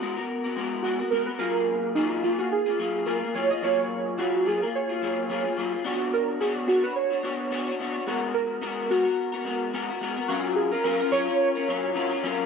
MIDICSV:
0, 0, Header, 1, 3, 480
1, 0, Start_track
1, 0, Key_signature, 6, "major"
1, 0, Tempo, 555556
1, 1206, Time_signature, 4, 2, 24, 8
1, 10764, End_track
2, 0, Start_track
2, 0, Title_t, "Synth keys"
2, 0, Program_c, 0, 88
2, 712, Note_on_c, 0, 66, 72
2, 942, Note_off_c, 0, 66, 0
2, 955, Note_on_c, 0, 70, 76
2, 1086, Note_on_c, 0, 71, 72
2, 1097, Note_off_c, 0, 70, 0
2, 1138, Note_off_c, 0, 71, 0
2, 1197, Note_on_c, 0, 70, 90
2, 1684, Note_on_c, 0, 63, 74
2, 1696, Note_off_c, 0, 70, 0
2, 1926, Note_on_c, 0, 65, 74
2, 1932, Note_off_c, 0, 63, 0
2, 1986, Note_off_c, 0, 65, 0
2, 2064, Note_on_c, 0, 66, 88
2, 2162, Note_off_c, 0, 66, 0
2, 2175, Note_on_c, 0, 68, 85
2, 2646, Note_on_c, 0, 70, 82
2, 2665, Note_off_c, 0, 68, 0
2, 2894, Note_off_c, 0, 70, 0
2, 2896, Note_on_c, 0, 73, 89
2, 3025, Note_on_c, 0, 75, 91
2, 3027, Note_off_c, 0, 73, 0
2, 3133, Note_off_c, 0, 75, 0
2, 3140, Note_on_c, 0, 73, 99
2, 3613, Note_on_c, 0, 66, 87
2, 3628, Note_off_c, 0, 73, 0
2, 3857, Note_off_c, 0, 66, 0
2, 3857, Note_on_c, 0, 68, 82
2, 3988, Note_off_c, 0, 68, 0
2, 3992, Note_on_c, 0, 70, 82
2, 4038, Note_off_c, 0, 70, 0
2, 4106, Note_on_c, 0, 73, 80
2, 4782, Note_off_c, 0, 73, 0
2, 5061, Note_on_c, 0, 66, 78
2, 5299, Note_on_c, 0, 70, 86
2, 5302, Note_off_c, 0, 66, 0
2, 5531, Note_on_c, 0, 68, 84
2, 5540, Note_off_c, 0, 70, 0
2, 5638, Note_off_c, 0, 68, 0
2, 5768, Note_on_c, 0, 66, 75
2, 5904, Note_off_c, 0, 66, 0
2, 5904, Note_on_c, 0, 71, 94
2, 6002, Note_off_c, 0, 71, 0
2, 6012, Note_on_c, 0, 73, 80
2, 6696, Note_off_c, 0, 73, 0
2, 6974, Note_on_c, 0, 66, 90
2, 7080, Note_off_c, 0, 66, 0
2, 7207, Note_on_c, 0, 70, 87
2, 7692, Note_on_c, 0, 66, 73
2, 7702, Note_off_c, 0, 70, 0
2, 8615, Note_off_c, 0, 66, 0
2, 8880, Note_on_c, 0, 66, 88
2, 9118, Note_on_c, 0, 68, 87
2, 9131, Note_off_c, 0, 66, 0
2, 9245, Note_off_c, 0, 68, 0
2, 9260, Note_on_c, 0, 70, 80
2, 9354, Note_off_c, 0, 70, 0
2, 9364, Note_on_c, 0, 70, 101
2, 9605, Note_on_c, 0, 73, 104
2, 9612, Note_off_c, 0, 70, 0
2, 10530, Note_off_c, 0, 73, 0
2, 10764, End_track
3, 0, Start_track
3, 0, Title_t, "Clean electric guitar"
3, 0, Program_c, 1, 27
3, 2, Note_on_c, 1, 56, 60
3, 12, Note_on_c, 1, 59, 60
3, 20, Note_on_c, 1, 66, 60
3, 23, Note_on_c, 1, 70, 67
3, 130, Note_off_c, 1, 70, 0
3, 136, Note_off_c, 1, 56, 0
3, 140, Note_off_c, 1, 66, 0
3, 140, Note_on_c, 1, 70, 55
3, 141, Note_off_c, 1, 59, 0
3, 151, Note_on_c, 1, 66, 51
3, 160, Note_on_c, 1, 59, 44
3, 371, Note_off_c, 1, 70, 0
3, 381, Note_on_c, 1, 70, 52
3, 382, Note_off_c, 1, 66, 0
3, 389, Note_off_c, 1, 59, 0
3, 393, Note_on_c, 1, 66, 51
3, 399, Note_on_c, 1, 59, 41
3, 481, Note_off_c, 1, 59, 0
3, 485, Note_on_c, 1, 56, 62
3, 487, Note_off_c, 1, 70, 0
3, 491, Note_off_c, 1, 66, 0
3, 492, Note_on_c, 1, 59, 68
3, 502, Note_on_c, 1, 66, 62
3, 505, Note_on_c, 1, 70, 68
3, 714, Note_off_c, 1, 56, 0
3, 716, Note_off_c, 1, 59, 0
3, 723, Note_off_c, 1, 66, 0
3, 725, Note_on_c, 1, 56, 64
3, 726, Note_off_c, 1, 70, 0
3, 727, Note_on_c, 1, 59, 62
3, 734, Note_on_c, 1, 66, 71
3, 737, Note_on_c, 1, 70, 69
3, 846, Note_off_c, 1, 70, 0
3, 856, Note_on_c, 1, 70, 43
3, 857, Note_off_c, 1, 56, 0
3, 858, Note_off_c, 1, 59, 0
3, 859, Note_off_c, 1, 66, 0
3, 869, Note_on_c, 1, 66, 42
3, 876, Note_on_c, 1, 59, 35
3, 959, Note_off_c, 1, 59, 0
3, 963, Note_on_c, 1, 56, 64
3, 965, Note_off_c, 1, 70, 0
3, 967, Note_off_c, 1, 66, 0
3, 969, Note_on_c, 1, 59, 51
3, 977, Note_on_c, 1, 66, 59
3, 985, Note_on_c, 1, 70, 60
3, 1079, Note_off_c, 1, 70, 0
3, 1089, Note_on_c, 1, 70, 41
3, 1090, Note_off_c, 1, 66, 0
3, 1097, Note_off_c, 1, 56, 0
3, 1100, Note_off_c, 1, 59, 0
3, 1100, Note_on_c, 1, 66, 41
3, 1109, Note_on_c, 1, 59, 38
3, 1199, Note_off_c, 1, 59, 0
3, 1200, Note_on_c, 1, 54, 73
3, 1202, Note_off_c, 1, 70, 0
3, 1203, Note_on_c, 1, 58, 83
3, 1205, Note_off_c, 1, 66, 0
3, 1207, Note_on_c, 1, 68, 77
3, 1208, Note_on_c, 1, 65, 84
3, 1685, Note_off_c, 1, 58, 0
3, 1687, Note_off_c, 1, 65, 0
3, 1687, Note_off_c, 1, 68, 0
3, 1690, Note_off_c, 1, 54, 0
3, 1693, Note_on_c, 1, 54, 71
3, 1697, Note_on_c, 1, 58, 76
3, 1698, Note_on_c, 1, 65, 71
3, 1704, Note_on_c, 1, 68, 79
3, 1910, Note_off_c, 1, 54, 0
3, 1920, Note_on_c, 1, 54, 51
3, 1924, Note_off_c, 1, 58, 0
3, 1924, Note_off_c, 1, 65, 0
3, 1934, Note_off_c, 1, 68, 0
3, 1934, Note_on_c, 1, 58, 55
3, 1935, Note_on_c, 1, 65, 55
3, 1944, Note_on_c, 1, 68, 58
3, 2049, Note_off_c, 1, 68, 0
3, 2055, Note_off_c, 1, 54, 0
3, 2055, Note_off_c, 1, 65, 0
3, 2059, Note_on_c, 1, 68, 47
3, 2063, Note_off_c, 1, 58, 0
3, 2066, Note_on_c, 1, 65, 40
3, 2076, Note_on_c, 1, 58, 44
3, 2288, Note_off_c, 1, 68, 0
3, 2298, Note_on_c, 1, 68, 46
3, 2300, Note_off_c, 1, 65, 0
3, 2307, Note_off_c, 1, 58, 0
3, 2310, Note_on_c, 1, 65, 44
3, 2318, Note_on_c, 1, 58, 42
3, 2406, Note_off_c, 1, 58, 0
3, 2406, Note_off_c, 1, 68, 0
3, 2408, Note_on_c, 1, 54, 53
3, 2412, Note_off_c, 1, 65, 0
3, 2416, Note_on_c, 1, 58, 60
3, 2424, Note_on_c, 1, 65, 66
3, 2428, Note_on_c, 1, 68, 61
3, 2634, Note_off_c, 1, 54, 0
3, 2637, Note_off_c, 1, 58, 0
3, 2644, Note_on_c, 1, 54, 64
3, 2645, Note_off_c, 1, 65, 0
3, 2647, Note_off_c, 1, 68, 0
3, 2648, Note_on_c, 1, 58, 67
3, 2655, Note_on_c, 1, 65, 75
3, 2657, Note_on_c, 1, 68, 70
3, 2773, Note_off_c, 1, 68, 0
3, 2777, Note_off_c, 1, 54, 0
3, 2779, Note_off_c, 1, 58, 0
3, 2783, Note_off_c, 1, 65, 0
3, 2784, Note_on_c, 1, 68, 43
3, 2795, Note_on_c, 1, 65, 45
3, 2804, Note_on_c, 1, 58, 42
3, 2887, Note_off_c, 1, 58, 0
3, 2887, Note_on_c, 1, 54, 55
3, 2889, Note_off_c, 1, 68, 0
3, 2891, Note_off_c, 1, 65, 0
3, 2898, Note_on_c, 1, 58, 54
3, 2902, Note_on_c, 1, 65, 68
3, 2909, Note_on_c, 1, 68, 64
3, 3010, Note_off_c, 1, 68, 0
3, 3019, Note_off_c, 1, 54, 0
3, 3020, Note_off_c, 1, 65, 0
3, 3020, Note_on_c, 1, 68, 46
3, 3024, Note_off_c, 1, 58, 0
3, 3030, Note_on_c, 1, 65, 42
3, 3037, Note_on_c, 1, 58, 41
3, 3118, Note_off_c, 1, 58, 0
3, 3123, Note_off_c, 1, 65, 0
3, 3128, Note_off_c, 1, 68, 0
3, 3128, Note_on_c, 1, 54, 70
3, 3128, Note_on_c, 1, 58, 80
3, 3133, Note_on_c, 1, 65, 83
3, 3143, Note_on_c, 1, 68, 85
3, 3606, Note_off_c, 1, 54, 0
3, 3608, Note_off_c, 1, 58, 0
3, 3610, Note_off_c, 1, 65, 0
3, 3610, Note_on_c, 1, 54, 69
3, 3613, Note_off_c, 1, 68, 0
3, 3618, Note_on_c, 1, 58, 71
3, 3619, Note_on_c, 1, 65, 78
3, 3624, Note_on_c, 1, 68, 75
3, 3843, Note_off_c, 1, 54, 0
3, 3848, Note_off_c, 1, 58, 0
3, 3853, Note_off_c, 1, 65, 0
3, 3854, Note_on_c, 1, 54, 52
3, 3856, Note_off_c, 1, 68, 0
3, 3858, Note_on_c, 1, 58, 53
3, 3869, Note_on_c, 1, 65, 62
3, 3874, Note_on_c, 1, 68, 55
3, 3975, Note_off_c, 1, 68, 0
3, 3982, Note_off_c, 1, 54, 0
3, 3984, Note_off_c, 1, 65, 0
3, 3985, Note_off_c, 1, 58, 0
3, 3985, Note_on_c, 1, 68, 48
3, 3995, Note_on_c, 1, 65, 39
3, 4003, Note_on_c, 1, 58, 40
3, 4217, Note_off_c, 1, 68, 0
3, 4225, Note_off_c, 1, 65, 0
3, 4227, Note_on_c, 1, 68, 45
3, 4231, Note_off_c, 1, 58, 0
3, 4235, Note_on_c, 1, 65, 48
3, 4244, Note_on_c, 1, 58, 37
3, 4331, Note_off_c, 1, 68, 0
3, 4335, Note_off_c, 1, 58, 0
3, 4335, Note_off_c, 1, 65, 0
3, 4337, Note_on_c, 1, 54, 56
3, 4346, Note_on_c, 1, 58, 62
3, 4350, Note_on_c, 1, 65, 62
3, 4354, Note_on_c, 1, 68, 59
3, 4563, Note_off_c, 1, 54, 0
3, 4564, Note_off_c, 1, 58, 0
3, 4570, Note_off_c, 1, 65, 0
3, 4574, Note_on_c, 1, 54, 64
3, 4574, Note_on_c, 1, 58, 70
3, 4575, Note_off_c, 1, 68, 0
3, 4580, Note_on_c, 1, 65, 71
3, 4586, Note_on_c, 1, 68, 80
3, 4693, Note_off_c, 1, 68, 0
3, 4702, Note_off_c, 1, 65, 0
3, 4703, Note_off_c, 1, 54, 0
3, 4703, Note_off_c, 1, 58, 0
3, 4703, Note_on_c, 1, 68, 47
3, 4712, Note_on_c, 1, 65, 48
3, 4722, Note_on_c, 1, 58, 40
3, 4808, Note_off_c, 1, 58, 0
3, 4809, Note_off_c, 1, 68, 0
3, 4811, Note_on_c, 1, 54, 72
3, 4814, Note_off_c, 1, 65, 0
3, 4818, Note_on_c, 1, 58, 75
3, 4824, Note_on_c, 1, 65, 64
3, 4828, Note_on_c, 1, 68, 68
3, 4930, Note_off_c, 1, 68, 0
3, 4941, Note_off_c, 1, 54, 0
3, 4941, Note_off_c, 1, 65, 0
3, 4941, Note_on_c, 1, 68, 43
3, 4945, Note_off_c, 1, 58, 0
3, 4951, Note_on_c, 1, 65, 42
3, 4957, Note_on_c, 1, 58, 38
3, 5045, Note_off_c, 1, 58, 0
3, 5048, Note_off_c, 1, 68, 0
3, 5049, Note_on_c, 1, 59, 74
3, 5050, Note_off_c, 1, 65, 0
3, 5053, Note_on_c, 1, 62, 85
3, 5056, Note_on_c, 1, 66, 79
3, 5065, Note_on_c, 1, 73, 83
3, 5525, Note_off_c, 1, 62, 0
3, 5533, Note_off_c, 1, 59, 0
3, 5536, Note_on_c, 1, 59, 67
3, 5536, Note_on_c, 1, 62, 70
3, 5537, Note_off_c, 1, 73, 0
3, 5539, Note_off_c, 1, 66, 0
3, 5543, Note_on_c, 1, 66, 75
3, 5548, Note_on_c, 1, 73, 84
3, 5750, Note_off_c, 1, 59, 0
3, 5757, Note_off_c, 1, 62, 0
3, 5760, Note_on_c, 1, 59, 56
3, 5764, Note_off_c, 1, 66, 0
3, 5768, Note_on_c, 1, 62, 60
3, 5773, Note_off_c, 1, 73, 0
3, 5774, Note_on_c, 1, 66, 52
3, 5783, Note_on_c, 1, 73, 64
3, 5888, Note_off_c, 1, 73, 0
3, 5896, Note_off_c, 1, 59, 0
3, 5896, Note_off_c, 1, 66, 0
3, 5899, Note_on_c, 1, 73, 48
3, 5900, Note_off_c, 1, 62, 0
3, 5907, Note_on_c, 1, 66, 41
3, 5917, Note_on_c, 1, 62, 38
3, 6129, Note_off_c, 1, 73, 0
3, 6137, Note_off_c, 1, 66, 0
3, 6140, Note_on_c, 1, 73, 48
3, 6147, Note_on_c, 1, 66, 41
3, 6149, Note_off_c, 1, 62, 0
3, 6158, Note_on_c, 1, 62, 41
3, 6244, Note_off_c, 1, 62, 0
3, 6248, Note_off_c, 1, 73, 0
3, 6248, Note_on_c, 1, 59, 54
3, 6249, Note_off_c, 1, 66, 0
3, 6255, Note_on_c, 1, 62, 61
3, 6259, Note_on_c, 1, 66, 53
3, 6263, Note_on_c, 1, 73, 66
3, 6477, Note_off_c, 1, 59, 0
3, 6484, Note_off_c, 1, 62, 0
3, 6487, Note_off_c, 1, 66, 0
3, 6488, Note_on_c, 1, 59, 69
3, 6494, Note_off_c, 1, 73, 0
3, 6495, Note_on_c, 1, 62, 70
3, 6498, Note_on_c, 1, 66, 71
3, 6504, Note_on_c, 1, 73, 77
3, 6616, Note_off_c, 1, 73, 0
3, 6620, Note_off_c, 1, 59, 0
3, 6623, Note_off_c, 1, 62, 0
3, 6625, Note_off_c, 1, 66, 0
3, 6626, Note_on_c, 1, 73, 45
3, 6637, Note_on_c, 1, 66, 50
3, 6644, Note_on_c, 1, 62, 48
3, 6731, Note_off_c, 1, 73, 0
3, 6733, Note_off_c, 1, 62, 0
3, 6736, Note_off_c, 1, 66, 0
3, 6737, Note_on_c, 1, 59, 67
3, 6743, Note_on_c, 1, 62, 64
3, 6749, Note_on_c, 1, 66, 66
3, 6759, Note_on_c, 1, 73, 73
3, 6849, Note_off_c, 1, 73, 0
3, 6858, Note_off_c, 1, 66, 0
3, 6859, Note_on_c, 1, 73, 45
3, 6865, Note_off_c, 1, 59, 0
3, 6866, Note_off_c, 1, 62, 0
3, 6869, Note_on_c, 1, 66, 41
3, 6876, Note_on_c, 1, 62, 35
3, 6968, Note_off_c, 1, 73, 0
3, 6970, Note_on_c, 1, 56, 75
3, 6972, Note_off_c, 1, 62, 0
3, 6973, Note_off_c, 1, 66, 0
3, 6975, Note_on_c, 1, 59, 77
3, 6981, Note_on_c, 1, 66, 80
3, 6984, Note_on_c, 1, 70, 86
3, 7434, Note_off_c, 1, 56, 0
3, 7434, Note_off_c, 1, 59, 0
3, 7444, Note_on_c, 1, 56, 78
3, 7444, Note_on_c, 1, 59, 72
3, 7448, Note_off_c, 1, 66, 0
3, 7450, Note_off_c, 1, 70, 0
3, 7451, Note_on_c, 1, 66, 76
3, 7454, Note_on_c, 1, 70, 77
3, 7676, Note_off_c, 1, 56, 0
3, 7678, Note_off_c, 1, 59, 0
3, 7686, Note_on_c, 1, 56, 58
3, 7687, Note_off_c, 1, 66, 0
3, 7688, Note_on_c, 1, 59, 52
3, 7691, Note_off_c, 1, 70, 0
3, 7697, Note_on_c, 1, 66, 60
3, 7702, Note_on_c, 1, 70, 61
3, 7808, Note_off_c, 1, 70, 0
3, 7819, Note_off_c, 1, 56, 0
3, 7819, Note_on_c, 1, 70, 48
3, 7820, Note_off_c, 1, 59, 0
3, 7821, Note_off_c, 1, 66, 0
3, 7831, Note_on_c, 1, 66, 41
3, 7839, Note_on_c, 1, 59, 39
3, 8044, Note_off_c, 1, 70, 0
3, 8054, Note_on_c, 1, 70, 46
3, 8057, Note_off_c, 1, 66, 0
3, 8064, Note_off_c, 1, 59, 0
3, 8067, Note_on_c, 1, 66, 44
3, 8075, Note_on_c, 1, 59, 42
3, 8157, Note_off_c, 1, 59, 0
3, 8160, Note_on_c, 1, 56, 54
3, 8165, Note_off_c, 1, 66, 0
3, 8165, Note_off_c, 1, 70, 0
3, 8167, Note_on_c, 1, 59, 59
3, 8175, Note_on_c, 1, 66, 56
3, 8178, Note_on_c, 1, 70, 59
3, 8400, Note_off_c, 1, 56, 0
3, 8405, Note_off_c, 1, 59, 0
3, 8408, Note_off_c, 1, 66, 0
3, 8410, Note_off_c, 1, 70, 0
3, 8411, Note_on_c, 1, 56, 74
3, 8415, Note_on_c, 1, 59, 76
3, 8418, Note_on_c, 1, 66, 75
3, 8420, Note_on_c, 1, 70, 87
3, 8525, Note_off_c, 1, 70, 0
3, 8536, Note_on_c, 1, 70, 52
3, 8541, Note_off_c, 1, 56, 0
3, 8542, Note_off_c, 1, 66, 0
3, 8543, Note_off_c, 1, 59, 0
3, 8552, Note_on_c, 1, 66, 48
3, 8557, Note_on_c, 1, 59, 43
3, 8641, Note_off_c, 1, 59, 0
3, 8646, Note_off_c, 1, 70, 0
3, 8646, Note_on_c, 1, 56, 68
3, 8652, Note_off_c, 1, 66, 0
3, 8652, Note_on_c, 1, 59, 61
3, 8662, Note_on_c, 1, 66, 66
3, 8665, Note_on_c, 1, 70, 72
3, 8770, Note_off_c, 1, 70, 0
3, 8777, Note_off_c, 1, 66, 0
3, 8779, Note_off_c, 1, 56, 0
3, 8780, Note_on_c, 1, 70, 48
3, 8781, Note_off_c, 1, 59, 0
3, 8787, Note_on_c, 1, 66, 42
3, 8798, Note_on_c, 1, 59, 43
3, 8885, Note_off_c, 1, 70, 0
3, 8885, Note_on_c, 1, 54, 87
3, 8888, Note_off_c, 1, 59, 0
3, 8891, Note_off_c, 1, 66, 0
3, 8892, Note_on_c, 1, 61, 89
3, 8894, Note_on_c, 1, 65, 90
3, 8895, Note_on_c, 1, 70, 97
3, 9248, Note_off_c, 1, 70, 0
3, 9256, Note_off_c, 1, 65, 0
3, 9258, Note_off_c, 1, 54, 0
3, 9258, Note_on_c, 1, 70, 58
3, 9261, Note_off_c, 1, 61, 0
3, 9266, Note_on_c, 1, 65, 50
3, 9277, Note_on_c, 1, 61, 42
3, 9359, Note_off_c, 1, 61, 0
3, 9366, Note_off_c, 1, 70, 0
3, 9367, Note_on_c, 1, 54, 82
3, 9369, Note_off_c, 1, 65, 0
3, 9370, Note_on_c, 1, 61, 88
3, 9379, Note_on_c, 1, 65, 83
3, 9382, Note_on_c, 1, 70, 87
3, 9490, Note_off_c, 1, 70, 0
3, 9499, Note_off_c, 1, 54, 0
3, 9500, Note_off_c, 1, 61, 0
3, 9500, Note_on_c, 1, 70, 53
3, 9501, Note_off_c, 1, 65, 0
3, 9511, Note_on_c, 1, 65, 44
3, 9514, Note_on_c, 1, 61, 45
3, 9595, Note_off_c, 1, 61, 0
3, 9601, Note_on_c, 1, 54, 67
3, 9605, Note_off_c, 1, 65, 0
3, 9606, Note_on_c, 1, 61, 70
3, 9607, Note_off_c, 1, 70, 0
3, 9615, Note_on_c, 1, 65, 71
3, 9619, Note_on_c, 1, 70, 75
3, 9730, Note_off_c, 1, 70, 0
3, 9735, Note_off_c, 1, 54, 0
3, 9738, Note_off_c, 1, 61, 0
3, 9740, Note_on_c, 1, 70, 53
3, 9743, Note_off_c, 1, 65, 0
3, 9752, Note_on_c, 1, 65, 47
3, 9763, Note_on_c, 1, 61, 45
3, 9971, Note_off_c, 1, 70, 0
3, 9981, Note_off_c, 1, 65, 0
3, 9981, Note_on_c, 1, 70, 53
3, 9991, Note_off_c, 1, 61, 0
3, 9992, Note_on_c, 1, 65, 51
3, 10001, Note_on_c, 1, 61, 43
3, 10087, Note_off_c, 1, 70, 0
3, 10089, Note_off_c, 1, 61, 0
3, 10092, Note_on_c, 1, 54, 64
3, 10093, Note_off_c, 1, 65, 0
3, 10100, Note_on_c, 1, 61, 68
3, 10104, Note_on_c, 1, 65, 59
3, 10109, Note_on_c, 1, 70, 68
3, 10313, Note_off_c, 1, 54, 0
3, 10318, Note_off_c, 1, 61, 0
3, 10323, Note_on_c, 1, 54, 84
3, 10325, Note_off_c, 1, 65, 0
3, 10327, Note_off_c, 1, 70, 0
3, 10328, Note_on_c, 1, 61, 89
3, 10335, Note_on_c, 1, 65, 81
3, 10337, Note_on_c, 1, 70, 105
3, 10448, Note_off_c, 1, 70, 0
3, 10456, Note_off_c, 1, 54, 0
3, 10458, Note_off_c, 1, 61, 0
3, 10458, Note_on_c, 1, 70, 62
3, 10459, Note_off_c, 1, 65, 0
3, 10469, Note_on_c, 1, 65, 57
3, 10478, Note_on_c, 1, 61, 50
3, 10564, Note_off_c, 1, 61, 0
3, 10565, Note_off_c, 1, 70, 0
3, 10568, Note_on_c, 1, 54, 80
3, 10569, Note_off_c, 1, 65, 0
3, 10574, Note_on_c, 1, 61, 79
3, 10579, Note_on_c, 1, 65, 79
3, 10587, Note_on_c, 1, 70, 88
3, 10764, Note_off_c, 1, 54, 0
3, 10764, Note_off_c, 1, 61, 0
3, 10764, Note_off_c, 1, 65, 0
3, 10764, Note_off_c, 1, 70, 0
3, 10764, End_track
0, 0, End_of_file